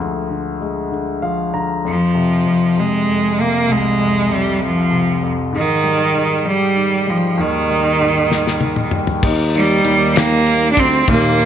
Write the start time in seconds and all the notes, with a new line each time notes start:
Already playing: D3 F3 G#3
0.00 D2
0.30 D3
0.61 G#3
0.92 D3
1.22 F3 F5
1.54 D3 A#5
1.85 F2 F3
2.15 C3
2.46 F2
2.77 C3 G#3
3.07 F2
3.38 C3 A#3
3.68 C2 G#3
3.99 F2
4.29 C3
4.34 G3
4.61 F2 F3
4.91 C3
5.23 F2
5.52 G#2 D#3
5.84 G3
6.15 G#2
6.45 G3
6.76 D#3
7.07 F3 G3
7.38 D#2 D#3
7.70 G3
8.00 G#2
8.30 G3, snare
8.47 snare
8.61 D#3, high tom
8.76 mid tom
8.91 G3, mid tom
9.07 floor tom
9.23 D#2 D#4, kick, crash
9.55 D#3 G3, ride
9.84 D#2 G3, ride
10.16 A#3, snare, ride
10.46 ride
10.72 D4
10.77 D2 C4, kick, ride
11.08 D#2 A#2 A#3, kick, ride
11.40 D#3, ride